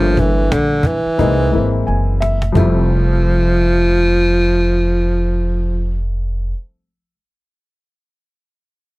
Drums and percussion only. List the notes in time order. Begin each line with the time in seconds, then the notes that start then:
0.17 cajon bass
0.52 cajon slap
0.83 cajon bass, cajon slap
1.19 cajon bass
1.53 cajon slap
1.87 cajon slap
2.22 cajon slap
2.42 cajon slap
2.55 cajon bass